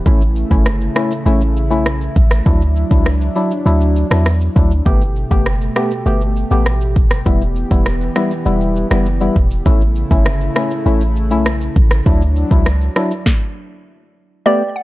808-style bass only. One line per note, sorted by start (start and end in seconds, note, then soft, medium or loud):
0.06 0.44 A1 loud
0.51 0.89 G1 medium
1.26 1.72 A1 loud
1.71 2.09 B1 medium
2.16 2.42 A1 medium
2.46 2.85 D2 loud
2.91 3.29 C#2 medium
3.66 4.04 D2 loud
4.11 4.49 E2 medium
4.56 4.82 D2 medium
4.86 5.25 G1 loud
5.31 5.70 F#1 medium
6.06 6.44 G1 medium
6.51 6.98 A1 medium
6.96 7.22 G1 medium
7.26 7.65 E1 loud
7.71 8.10 E1 loud
8.46 8.84 E1 loud
8.91 9.29 F#1 loud
9.36 9.62 E1 medium
9.66 10.04 A1 loud
10.11 10.49 G1 medium
10.86 11.32 A1 loud
11.31 11.69 B1 medium
11.76 12.02 A1 medium
12.06 12.45 D2 loud
12.51 12.89 C#2 loud